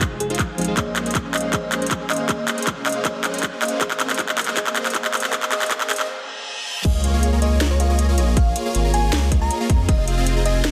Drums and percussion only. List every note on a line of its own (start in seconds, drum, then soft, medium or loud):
0.01 kick loud
0.01 clap medium
0.01 closed hi-hat medium
0.20 closed hi-hat medium
0.30 closed hi-hat soft
0.35 closed hi-hat medium
0.39 kick loud
0.39 clap medium
0.39 closed hi-hat medium
0.58 closed hi-hat soft
0.61 closed hi-hat medium
0.65 closed hi-hat medium
0.77 kick medium
0.77 clap medium
0.77 closed hi-hat medium
0.96 clap medium
0.96 closed hi-hat medium
1.06 closed hi-hat soft
1.11 closed hi-hat medium
1.15 kick loud
1.15 clap medium
1.15 closed hi-hat medium
1.34 clap medium
1.34 closed hi-hat soft
1.38 closed hi-hat medium
1.41 closed hi-hat medium
1.53 kick loud
1.53 clap medium
1.53 closed hi-hat medium
1.72 clap medium
1.72 closed hi-hat medium
1.82 closed hi-hat soft
1.87 closed hi-hat medium
1.91 kick medium
1.91 clap medium
1.91 closed hi-hat medium
2.10 clap medium
2.10 closed hi-hat soft
2.13 closed hi-hat medium
2.16 closed hi-hat medium
2.29 kick loud
2.29 clap medium
2.29 closed hi-hat medium
2.48 clap medium
2.48 closed hi-hat medium
2.58 closed hi-hat soft
2.62 closed hi-hat medium
2.67 kick loud
2.67 clap medium
2.67 closed hi-hat medium
2.86 clap medium
2.86 closed hi-hat soft
2.89 closed hi-hat medium
2.92 closed hi-hat medium
3.05 kick loud
3.05 clap medium
3.05 closed hi-hat medium
3.24 clap medium
3.24 closed hi-hat medium
3.34 closed hi-hat soft
3.39 closed hi-hat medium
3.43 kick loud
3.43 clap medium
3.43 closed hi-hat medium
3.62 clap medium
3.62 closed hi-hat soft
3.65 closed hi-hat medium
3.68 closed hi-hat medium
3.81 kick loud
3.81 clap medium
3.81 closed hi-hat medium
3.91 clap medium
4.00 clap medium
4.00 closed hi-hat medium
4.10 clap medium
4.10 closed hi-hat soft
4.14 closed hi-hat medium
4.19 kick loud
4.19 clap medium
4.19 closed hi-hat medium
4.29 clap medium
4.38 clap loud
4.38 closed hi-hat medium
4.41 closed hi-hat medium
4.44 clap medium
4.44 closed hi-hat medium
4.57 kick loud
4.57 clap loud
4.57 closed hi-hat medium
4.67 clap medium
4.76 clap medium
4.76 closed hi-hat medium
4.86 clap medium
4.86 closed hi-hat medium
4.90 closed hi-hat medium
4.95 kick loud
4.95 clap medium
4.95 closed hi-hat medium
5.05 clap medium
5.14 clap medium
5.14 closed hi-hat soft
5.17 closed hi-hat medium
5.20 clap medium
5.20 closed hi-hat medium
5.33 kick loud
5.33 clap loud
5.33 closed hi-hat medium
5.43 clap medium
5.52 clap loud
5.52 closed hi-hat medium
5.62 clap medium
5.62 closed hi-hat medium
5.66 closed hi-hat medium
5.71 kick loud
5.71 clap loud
5.71 closed hi-hat medium
5.81 clap medium
5.90 clap loud
5.90 closed hi-hat medium
5.93 closed hi-hat medium
5.96 clap medium
5.96 closed hi-hat medium
6.85 kick loud
6.85 closed hi-hat medium
6.85 crash loud
7.04 closed hi-hat medium
7.23 closed hi-hat medium
7.42 closed hi-hat medium
7.61 snare loud
7.61 closed hi-hat medium
7.80 closed hi-hat medium
7.99 closed hi-hat medium
8.18 closed hi-hat medium
8.37 kick loud
8.37 closed hi-hat medium
8.56 closed hi-hat medium
8.75 closed hi-hat medium
8.94 closed hi-hat medium
9.13 snare loud
9.13 closed hi-hat medium
9.32 kick medium
9.32 closed hi-hat medium
9.51 closed hi-hat medium
9.70 kick loud
9.70 closed hi-hat medium
9.89 kick loud
9.89 closed hi-hat medium
10.08 closed hi-hat medium
10.27 closed hi-hat medium
10.46 closed hi-hat medium
10.65 snare loud
10.65 closed hi-hat medium